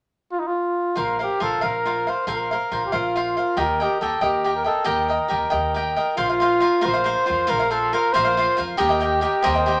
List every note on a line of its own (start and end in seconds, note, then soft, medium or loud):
0.31 0.41 F4 medium
0.39 0.49 D#4 soft
0.47 0.99 F4 medium
0.95 1.26 A#1 medium
0.95 1.20 F4 soft
0.95 1.20 A#4 soft
0.95 1.21 A#4 medium
0.95 1.19 C5 soft
0.95 1.18 F5 medium
1.19 1.44 G4 medium
1.19 1.39 A#4 soft
1.19 1.39 C5 soft
1.19 1.40 F5 soft
1.40 1.55 A#1 medium
1.40 1.61 F4 soft
1.40 1.65 A4 medium
1.40 1.61 A#4 soft
1.40 1.61 C5 soft
1.40 1.60 F5 soft
1.61 2.05 A#1 medium
1.61 1.84 F4 soft
1.61 1.85 A#4 soft
1.61 2.11 A#4 medium
1.61 1.85 C5 soft
1.61 1.85 F5 soft
1.85 2.06 F4 soft
1.85 2.07 A#4 soft
1.85 2.07 C5 soft
1.85 2.06 F5 soft
2.07 2.26 A#4 soft
2.07 2.27 C5 soft
2.07 2.27 C5 medium
2.07 2.27 F5 soft
2.27 2.56 A#1 medium
2.27 2.50 F4 medium
2.27 2.51 A#4 medium
2.27 2.82 A#4 medium
2.27 2.51 C5 medium
2.27 2.50 F5 medium
2.51 2.70 A#4 soft
2.51 2.72 C5 soft
2.51 2.72 F5 soft
2.71 2.85 A#1 medium
2.71 2.92 F4 soft
2.71 2.92 A#4 soft
2.71 2.92 C5 soft
2.71 2.91 F5 soft
2.86 2.95 G4 medium
2.92 3.35 A#1 medium
2.92 3.14 F4 soft
2.92 3.61 F4 medium
2.92 3.15 A#4 soft
2.92 3.16 C5 soft
2.92 3.15 F5 soft
3.16 3.36 F4 soft
3.16 3.37 A#4 soft
3.16 3.36 C5 soft
3.16 3.35 F5 soft
3.37 3.56 A#4 soft
3.37 3.57 C5 soft
3.37 3.57 F5 soft
3.57 3.85 D#2 medium
3.57 3.80 G4 medium
3.57 3.80 A#4 medium
3.57 3.84 A#4 medium
3.57 3.80 D#5 medium
3.57 3.79 G5 medium
3.80 4.01 G4 medium
3.80 4.01 A#4 soft
3.80 4.01 D#5 soft
3.80 4.01 G5 soft
4.01 4.15 D#2 medium
4.01 4.21 G4 soft
4.01 4.24 A4 medium
4.01 4.21 A#4 soft
4.01 4.20 D#5 soft
4.01 4.20 G5 medium
4.21 4.64 D#2 medium
4.21 4.43 G4 soft
4.21 4.55 G4 medium
4.21 4.44 A#4 soft
4.21 4.44 D#5 soft
4.21 4.44 G5 medium
4.44 4.66 G4 soft
4.44 4.65 A#4 soft
4.44 4.65 D#5 soft
4.44 4.63 G5 soft
4.56 4.66 A#4 medium
4.64 4.89 A4 medium
4.64 4.84 A#4 soft
4.64 4.84 D#5 soft
4.64 4.84 G5 soft
4.84 5.16 D#2 medium
4.84 5.09 G4 medium
4.84 5.09 A#4 medium
4.84 5.98 A#4 medium
4.84 5.08 D#5 medium
4.84 5.07 G5 medium
5.08 5.28 A#4 soft
5.08 5.28 D#5 soft
5.08 5.29 G5 soft
5.28 5.45 D#2 medium
5.28 5.50 G4 soft
5.28 5.50 A#4 soft
5.28 5.50 D#5 soft
5.28 5.49 G5 soft
5.50 5.95 D#2 medium
5.50 5.73 G4 soft
5.50 5.74 A#4 soft
5.50 5.75 D#5 soft
5.50 5.75 G5 medium
5.74 5.97 G4 soft
5.74 5.97 A#4 soft
5.74 5.96 D#5 soft
5.74 5.95 G5 medium
5.96 6.16 A#4 soft
5.96 6.17 D#5 soft
5.96 6.17 G5 soft
6.17 6.61 A#1 medium
6.17 6.30 F4 medium
6.17 6.87 F4 medium
6.17 6.29 A#4 medium
6.17 6.28 C5 medium
6.17 6.28 F5 medium
6.29 6.40 A#4 soft
6.29 6.40 C5 soft
6.29 6.41 F5 soft
6.40 6.59 F4 soft
6.40 6.60 A#4 soft
6.40 6.61 C5 medium
6.40 6.61 F5 medium
6.60 6.80 F4 medium
6.60 6.80 A#4 soft
6.60 6.81 C5 medium
6.60 6.81 F5 soft
6.81 6.94 F4 medium
6.81 6.94 A#4 medium
6.81 6.93 C5 medium
6.81 6.92 F5 medium
6.86 7.14 A#1 medium
6.86 7.51 C5 medium
6.94 7.03 A#4 soft
6.94 7.04 C5 soft
6.94 7.05 F5 soft
7.04 7.25 F4 soft
7.04 7.26 A#4 soft
7.04 7.25 C5 medium
7.04 7.27 F5 medium
7.26 7.43 F2 medium
7.26 7.46 F4 soft
7.26 7.46 A#4 soft
7.26 7.47 C5 soft
7.26 7.47 F5 soft
7.47 7.93 A#1 medium
7.47 7.60 F4 medium
7.47 7.60 A#4 medium
7.47 7.73 A#4 medium
7.47 7.59 C5 medium
7.47 7.58 F5 medium
7.59 7.69 A#4 soft
7.59 7.70 C5 soft
7.59 7.70 F5 soft
7.70 7.91 F4 soft
7.70 7.95 A4 medium
7.70 7.92 A#4 soft
7.70 7.93 C5 soft
7.70 7.93 F5 soft
7.93 8.12 F4 soft
7.93 8.13 A#4 medium
7.93 8.14 A#4 medium
7.93 8.13 C5 medium
7.93 8.14 F5 medium
8.13 8.44 A#1 medium
8.13 8.26 F4 medium
8.13 8.25 A#4 medium
8.13 8.63 C5 medium
8.13 8.24 C5 medium
8.13 8.23 F5 medium
8.25 8.36 A#4 soft
8.25 8.37 C5 soft
8.25 8.37 F5 soft
8.37 8.56 F4 medium
8.37 8.57 A#4 soft
8.37 8.57 C5 medium
8.37 8.57 F5 medium
8.57 8.72 F2 medium
8.57 8.77 F4 soft
8.57 8.77 A#4 soft
8.57 8.78 C5 medium
8.57 8.78 F5 medium
8.77 9.22 D#2 medium
8.77 8.90 G4 medium
8.77 9.45 G4 medium
8.77 8.89 A#4 medium
8.77 8.88 D#5 medium
8.77 8.88 G5 medium
8.89 8.99 A#4 soft
8.89 9.00 D#5 soft
8.89 9.00 G5 medium
9.00 9.20 G4 soft
9.00 9.21 A#4 medium
9.00 9.21 D#5 medium
9.00 9.21 G5 medium
9.21 9.41 G4 soft
9.21 9.43 A#4 medium
9.21 9.43 D#5 medium
9.21 9.43 G5 medium
9.42 9.74 D#2 medium
9.42 9.55 G4 medium
9.42 9.55 A#4 medium
9.42 9.80 C5 medium
9.42 9.54 D#5 medium
9.42 9.53 G5 medium
9.54 9.66 A#4 soft
9.54 9.66 D#5 soft
9.54 9.67 G5 soft
9.66 9.80 G4 soft
9.66 9.80 A#4 soft
9.66 9.80 D#5 medium
9.66 9.80 G5 medium